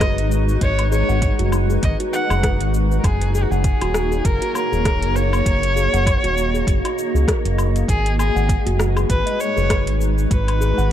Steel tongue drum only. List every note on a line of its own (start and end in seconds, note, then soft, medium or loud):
0.01 0.17 B4 loud
0.92 1.01 G#4 medium
1.09 1.16 F#5 medium
1.39 1.68 F#4 medium
1.70 1.98 G#4 medium
2.00 2.12 F#4 medium
2.30 2.43 G#4 medium
2.44 2.60 B4 loud
3.35 3.44 G#4 medium
3.52 3.59 F#5 medium
3.82 4.10 F#4 medium
4.12 4.40 G#4 medium
4.42 4.55 F#4 medium
4.72 4.85 G#4 medium
4.85 5.02 A#4 loud
5.76 5.86 G#4 medium
5.93 6.01 F#5 medium
6.24 6.52 F#4 medium
6.54 6.83 G#4 medium
6.85 6.97 F#4 medium
7.15 7.27 G#4 medium
7.28 7.44 A#4 loud
8.19 8.29 G#4 medium
8.36 8.43 F#5 medium
8.66 8.95 F#4 medium
8.96 9.25 G#4 medium
9.26 9.39 D#5 medium
9.57 9.69 G#4 medium
9.69 9.86 B4 loud
10.61 10.71 G#4 medium
10.78 10.86 F#5 medium